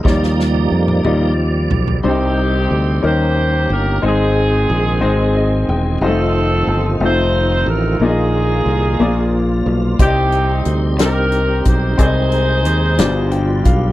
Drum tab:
HH |------------|------------|------------|------------|
SD |ooo---------|------------|------------|------------|
T1 |---o--------|------------|------------|------------|
T2 |-----oo-----|------------|------------|------------|
FT |----------oo|------------|------------|------------|
BD |o-----------|------------|------------|------------|

HH |------------|x-x-x-x-x-x-|x-x-x-x-x-x-|
SD |------------|------o-----|------o-----|
T1 |------------|------------|------------|
T2 |------------|------------|------------|
FT |------------|------------|------------|
BD |------------|o---------o-|o---------o-|